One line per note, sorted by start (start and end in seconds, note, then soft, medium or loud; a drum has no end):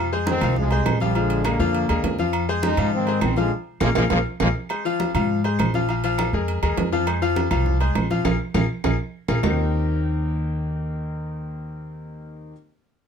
0.00 0.36 F2 medium
0.12 0.37 G#3 medium
0.12 0.37 G#4 medium
0.12 0.37 C5 medium
0.12 high conga soft
0.27 0.55 D#3 medium
0.27 0.55 C4 loud
0.27 high conga loud
0.27 low timbale medium
0.27 low agogo medium
0.41 0.83 C2 loud
0.41 0.66 F3 medium
0.41 0.66 F4 medium
0.41 0.67 F5 loud
0.41 high conga soft
0.41 low conga medium
0.41 low agogo loud
0.41 claves medium
0.56 0.98 C3 medium
0.56 0.98 G#3 loud
0.56 high conga soft
0.56 low conga medium
0.71 0.96 G#3 medium
0.71 0.96 G#4 medium
0.71 0.96 C5 medium
0.71 high conga soft
0.71 low agogo medium
0.86 1.54 A#1 medium
0.86 high conga medium
0.86 low timbale medium
0.86 low agogo loud
0.86 claves medium
1.00 1.15 A#2 medium
1.00 1.13 F3 loud
1.00 1.15 G3 medium
1.00 1.13 F4 medium
1.00 1.13 F5 loud
1.00 high conga medium
1.15 1.45 D3 medium
1.15 1.40 F3 medium
1.15 1.45 G#3 medium
1.15 1.40 F4 medium
1.15 1.40 F5 medium
1.15 high conga soft
1.15 low agogo medium
1.30 low agogo medium
1.44 2.20 D3 medium
1.44 1.57 G#3 medium
1.44 2.19 A#3 loud
1.44 1.57 G#4 medium
1.44 1.58 A#4 medium
1.44 high conga loud
1.44 low timbale medium
1.44 low agogo loud
1.44 claves medium
1.59 1.87 F2 loud
1.59 1.84 F3 loud
1.59 1.84 F4 loud
1.59 1.84 F5 loud
1.59 high conga soft
1.74 high conga soft
1.74 low agogo medium
1.89 2.03 D#2 medium
1.89 2.14 G#3 medium
1.89 2.14 G#4 medium
1.89 2.14 A#4 medium
1.89 high conga soft
1.89 low agogo loud
1.89 claves medium
2.04 2.72 F2 medium
2.04 high conga medium
2.04 low timbale medium
2.04 low agogo medium
2.19 2.43 F3 medium
2.19 2.43 F4 medium
2.19 2.44 F5 loud
2.19 high conga medium
2.33 low agogo loud
2.33 claves medium
2.48 2.73 G#3 medium
2.48 2.73 G#4 loud
2.48 2.73 C5 loud
2.48 high conga soft
2.63 2.91 G#3 medium
2.63 2.91 D#4 loud
2.63 high conga loud
2.63 low timbale medium
2.63 low agogo medium
2.77 3.19 G#2 medium
2.77 3.02 F3 loud
2.77 3.03 F4 loud
2.77 3.03 F5 medium
2.77 high conga soft
2.77 low conga medium
2.77 low agogo loud
2.77 claves medium
2.93 3.21 D#3 medium
2.93 3.20 C4 loud
2.93 high conga soft
3.07 3.32 G#3 medium
3.07 3.32 G#4 medium
3.07 3.32 C5 medium
3.07 high conga soft
3.07 low agogo medium
3.21 3.50 A#1 medium
3.21 3.37 D#3 medium
3.21 3.36 C4 loud
3.21 high conga loud
3.21 low timbale loud
3.21 low agogo loud
3.21 claves medium
3.36 3.52 D3 medium
3.36 3.49 F3 medium
3.36 3.52 G#3 medium
3.36 3.49 F4 loud
3.36 3.49 F5 loud
3.36 high conga medium
3.80 3.92 A#1 loud
3.80 3.89 F3 loud
3.80 3.89 G#3 loud
3.80 3.89 A#3 loud
3.80 3.91 F4 loud
3.80 3.91 G#4 loud
3.80 3.91 A#4 loud
3.80 high conga loud
3.80 high timbale loud
3.80 claves loud
3.95 4.07 A#1 loud
3.95 4.04 F3 loud
3.95 4.04 G#3 loud
3.95 4.04 A#3 loud
3.95 4.05 F4 loud
3.95 4.06 G#4 loud
3.95 4.06 A#4 loud
3.95 high conga loud
3.95 high timbale loud
3.95 claves loud
4.10 4.22 A#1 medium
4.10 4.18 F3 loud
4.10 4.18 G#3 loud
4.10 4.18 A#3 loud
4.10 4.20 F4 medium
4.10 4.21 G#4 medium
4.10 4.20 A#4 medium
4.10 high conga loud
4.10 high timbale loud
4.10 claves loud
4.40 4.51 A#1 medium
4.40 4.48 F3 loud
4.40 4.48 G#3 loud
4.40 4.48 A#3 loud
4.40 4.50 F4 medium
4.40 4.50 G#4 loud
4.40 4.50 A#4 medium
4.40 high conga loud
4.40 high timbale loud
4.40 claves loud
4.69 4.82 G#3 medium
4.69 4.83 G#4 medium
4.69 4.83 C5 medium
4.69 high conga soft
4.69 low agogo loud
4.69 claves medium
4.85 5.09 F3 loud
4.85 5.09 F4 loud
4.85 5.10 F5 loud
4.85 high conga soft
5.00 high conga loud
5.00 low timbale medium
5.00 low agogo medium
5.15 5.56 G#2 loud
5.15 5.39 F3 medium
5.15 5.39 F4 medium
5.15 5.39 F5 loud
5.15 high conga soft
5.15 low conga medium
5.15 low agogo loud
5.15 claves medium
5.30 high conga soft
5.44 5.69 G#3 medium
5.44 5.69 G#4 medium
5.44 5.69 C5 medium
5.44 high conga soft
5.44 low agogo medium
5.59 6.28 A#1 medium
5.59 high conga loud
5.59 low timbale medium
5.59 low agogo loud
5.59 claves medium
5.74 5.86 F3 medium
5.74 5.86 F4 medium
5.74 5.87 F5 medium
5.74 high conga medium
5.89 6.01 F3 medium
5.89 6.01 F4 medium
5.89 6.01 F5 medium
5.89 high conga soft
5.89 low agogo medium
6.04 6.28 F3 loud
6.04 6.28 F4 loud
6.04 6.28 F5 loud
6.04 high conga soft
6.04 low agogo medium
6.18 high conga loud
6.18 low timbale medium
6.18 low agogo loud
6.18 claves medium
6.33 6.60 F2 medium
6.33 6.58 G#3 medium
6.33 6.58 G#4 medium
6.33 6.58 A#4 medium
6.33 high conga soft
6.48 high conga soft
6.48 low agogo medium
6.63 6.76 D#2 medium
6.63 6.87 G#3 medium
6.63 6.87 G#4 medium
6.63 6.87 A#4 medium
6.63 high conga soft
6.63 low agogo loud
6.63 claves medium
6.77 7.46 F2 medium
6.77 high conga medium
6.77 low timbale medium
6.77 low agogo medium
6.92 7.04 F3 loud
6.92 7.04 F4 loud
6.92 7.05 F5 medium
6.92 high conga medium
7.07 7.19 G#3 medium
7.07 7.19 G#4 medium
7.07 7.19 C5 medium
7.07 high conga soft
7.07 low agogo loud
7.07 claves medium
7.22 7.46 F3 medium
7.22 7.46 F4 loud
7.22 7.46 F5 loud
7.22 high conga soft
7.36 high conga loud
7.36 low timbale medium
7.36 low agogo medium
7.51 7.92 C2 medium
7.51 7.75 F3 loud
7.51 7.76 F4 medium
7.51 7.76 F5 loud
7.51 high conga soft
7.51 low conga medium
7.51 low agogo loud
7.51 claves medium
7.66 high conga soft
7.66 low conga medium
7.81 8.05 G#3 medium
7.81 8.05 G#4 medium
7.81 8.05 C5 medium
7.81 high conga soft
7.81 low agogo medium
7.95 8.23 A#1 medium
7.95 high conga medium
7.95 low timbale medium
7.95 low agogo loud
7.95 claves medium
8.10 8.22 F3 medium
8.10 8.23 F4 loud
8.10 8.23 F5 loud
8.10 high conga medium
8.25 8.36 A#1 loud
8.25 8.34 F4 loud
8.25 8.34 G#4 loud
8.25 8.34 A#4 medium
8.25 high conga loud
8.25 high timbale medium
8.25 claves loud
8.54 8.66 A#1 loud
8.54 8.64 F4 loud
8.54 8.64 G#4 medium
8.54 8.64 A#4 loud
8.54 high conga loud
8.54 high timbale loud
8.54 claves loud
8.84 8.95 A#1 medium
8.84 8.94 F4 medium
8.84 8.94 G#4 medium
8.84 8.94 A#4 medium
8.84 high conga loud
8.84 high timbale loud
8.84 claves loud
9.28 9.40 A#1 loud
9.28 9.38 F4 medium
9.28 9.38 G#4 loud
9.28 9.38 A#4 loud
9.28 high conga medium
9.28 high timbale medium
9.28 claves medium
9.43 12.52 D#2 loud
9.43 12.51 D#3 medium
9.43 12.51 A#3 medium
9.43 12.51 C4 medium
9.43 12.52 D#4 medium
9.43 12.52 G4 medium
9.43 12.52 A#4 medium
9.43 low conga loud
9.43 low timbale medium
9.43 claves loud